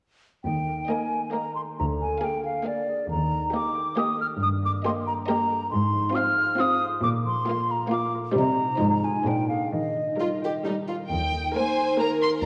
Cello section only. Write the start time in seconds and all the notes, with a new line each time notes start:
0.45 D#2
1.79 D2
3.10 D#2
4.42 G2
5.72 G#2
7.03 A#2
8.36 C3
8.80 G#2
9.26 A#2
9.72 D#3
11.12 D#2